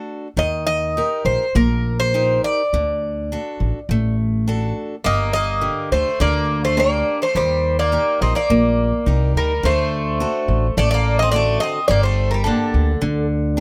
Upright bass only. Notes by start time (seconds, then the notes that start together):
0.37 D#2
1.25 A#1
1.55 A#1
2.73 D2
3.60 A1
3.89 A1
5.06 G1
5.92 D2
6.20 D2
7.35 D#2
8.21 A#1
8.50 A#1
9.06 C2
9.35 D2
9.63 D2
10.48 A1
10.77 A1
11.89 G1
12.74 D2
13.02 D2